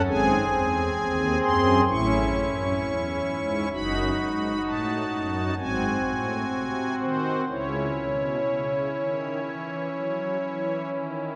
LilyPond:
<<
  \new Staff \with { instrumentName = "Pipe organ" } { \time 4/4 \key cis \minor \tempo 4 = 64 << { gis''4. bis''8 cis'''2 | b''4 a''4 gis''4. bis'8 | cis''2.~ cis''8 r8 | } \\ { <bis gis'>2 <cis' e'>2 | <dis' fis'>2 <bis fis'>2 | <cis' e'>1 | } >> }
  \new Staff \with { instrumentName = "Pipe organ" } { \clef bass \time 4/4 \key cis \minor <gis,, gis,>8 e,8 dis,8 fis,8 <a,, a,>8 fis,8 e,8 gis,8 | <fis,, fis,>8 gis,8 a,8 fis,8 <gis,, gis,>8 a,8 bis,8 dis8 | <cis, cis>8 b,8 cis8 dis8 e8 fis8 e8 dis8 | }
>>